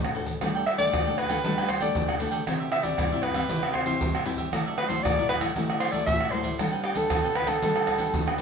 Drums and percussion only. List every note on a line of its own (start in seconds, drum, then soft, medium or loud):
0.04 pandeiro soft
0.04 tamborim medium
0.04 maracas soft
0.15 pandeiro medium
0.26 pandeiro medium
0.26 maracas medium
0.26 surdo soft
0.41 pandeiro medium
0.41 tamborim medium
0.41 maracas medium
0.41 surdo medium
0.56 pandeiro soft
0.56 maracas soft
0.67 pandeiro medium
0.67 tamborim medium
0.79 pandeiro medium
0.79 maracas medium
0.79 surdo soft
0.93 pandeiro medium
0.93 tamborim medium
0.93 maracas medium
0.93 surdo loud
1.07 pandeiro soft
1.07 maracas soft
1.18 pandeiro medium
1.18 tamborim medium
1.30 pandeiro medium
1.30 tamborim medium
1.30 maracas medium
1.30 surdo soft
1.44 pandeiro medium
1.44 maracas medium
1.44 surdo medium
1.58 pandeiro soft
1.58 tamborim medium
1.58 maracas soft
1.69 pandeiro medium
1.69 tamborim medium
1.69 maracas medium
1.69 surdo soft
1.80 pandeiro medium
1.80 maracas medium
1.80 surdo soft
1.95 pandeiro medium
1.95 maracas medium
1.95 surdo loud
2.09 pandeiro soft
2.09 tamborim medium
2.09 maracas soft
2.20 pandeiro medium
2.20 maracas medium
2.32 pandeiro medium
2.32 maracas medium
2.32 surdo soft
2.47 pandeiro medium
2.47 tamborim medium
2.47 maracas medium
2.47 surdo medium
2.61 pandeiro soft
2.61 maracas soft
2.72 pandeiro medium
2.72 tamborim medium
2.83 pandeiro medium
2.83 maracas medium
2.83 surdo soft
2.98 pandeiro medium
2.98 tamborim medium
2.98 maracas medium
2.98 surdo loud
3.12 pandeiro soft
3.12 maracas soft
3.23 pandeiro medium
3.23 tamborim medium
3.34 pandeiro medium
3.34 tamborim medium
3.34 maracas medium
3.34 surdo soft
3.49 pandeiro medium
3.49 maracas medium
3.49 surdo medium
3.63 pandeiro soft
3.63 tamborim medium
3.63 maracas soft
3.74 pandeiro medium
3.74 tamborim medium
3.74 surdo soft
3.86 pandeiro medium
3.86 maracas medium
3.86 surdo soft
4.01 pandeiro medium
4.01 maracas medium
4.01 surdo loud
4.15 pandeiro soft
4.15 tamborim medium
4.15 maracas soft
4.26 pandeiro medium
4.26 maracas medium
4.38 pandeiro medium
4.38 maracas medium
4.38 surdo soft
4.53 pandeiro medium
4.53 tamborim medium
4.53 maracas medium
4.53 surdo medium
4.66 pandeiro soft
4.66 maracas soft
4.78 pandeiro medium
4.78 tamborim medium
4.90 pandeiro medium
4.90 maracas medium
4.90 surdo soft
5.05 pandeiro medium
5.05 tamborim medium
5.05 maracas medium
5.05 surdo loud
5.18 pandeiro soft
5.18 maracas soft
5.29 pandeiro medium
5.29 tamborim medium
5.29 maracas medium
5.41 pandeiro medium
5.41 tamborim medium
5.41 maracas medium
5.41 surdo soft
5.56 pandeiro medium
5.56 maracas medium
5.56 surdo medium
5.70 pandeiro soft
5.70 tamborim medium
5.70 maracas soft
5.80 pandeiro medium
5.80 tamborim medium
5.80 maracas medium
5.92 pandeiro medium
5.92 maracas medium
5.92 surdo soft
6.07 pandeiro medium
6.07 maracas medium
6.07 surdo loud
6.21 pandeiro soft
6.21 tamborim medium
6.21 maracas soft
6.32 pandeiro medium
6.44 pandeiro medium
6.44 maracas medium
6.44 surdo soft
6.59 pandeiro medium
6.59 tamborim medium
6.59 maracas medium
6.59 surdo medium
6.73 pandeiro soft
6.73 maracas soft
6.84 pandeiro medium
6.84 tamborim medium
6.95 pandeiro medium
6.95 maracas medium
6.95 surdo soft
7.10 pandeiro medium
7.10 tamborim medium
7.10 maracas medium
7.10 surdo loud
7.24 pandeiro soft
7.24 maracas soft
7.35 pandeiro medium
7.35 tamborim medium
7.47 pandeiro medium
7.47 tamborim medium
7.47 maracas medium
7.47 surdo soft
7.62 pandeiro medium
7.62 maracas medium
7.62 surdo medium
7.76 pandeiro soft
7.76 tamborim medium
7.76 maracas soft
7.87 pandeiro medium
7.87 tamborim medium
7.87 surdo soft
7.98 pandeiro medium
7.98 maracas medium
7.98 surdo soft
8.14 pandeiro medium
8.14 maracas medium
8.14 surdo loud
8.28 pandeiro soft
8.28 tamborim medium
8.28 maracas soft
8.38 pandeiro medium
8.38 maracas medium